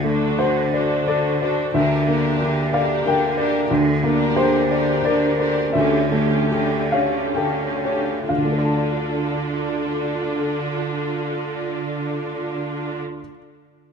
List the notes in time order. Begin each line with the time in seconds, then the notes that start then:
Already playing: D2 D3
0.02 A3 D4 F#4 A4
0.38 D3 F#4 C5
0.73 D4 F#4 A4 D5
1.07 D3 A4 D5
1.40 D4 F#4 A4 D5
1.74 D2 D3 D4 G4 A#4 E5
2.07 A#3 D4 G4 A#4
2.41 D3 G4
2.73 D4 G4 A#4 D5 F5
3.06 D3 A#4 G5
3.37 D4 G4 A#4 D5
3.70 D2 D3
4.03 A#3 D4 G4 A#4
4.36 D3 G4 C5
4.71 D4 G4 A#4 D5
5.04 D3 A#4 D5
5.39 D4 G4 A#4 D5
5.73 D2 D3 C#4 G4 A4 E5
6.10 A3 C#4 G4 A4
6.51 D3 G4
6.91 C#4 G4 A4 C#5 F5
7.35 D3 A4 G5
7.83 C#4 G4 A4 C#5
8.29 D2 D3 D4 F4 A4 F5
8.37 D3
8.44 A3
8.52 A4
8.58 D5
8.65 A5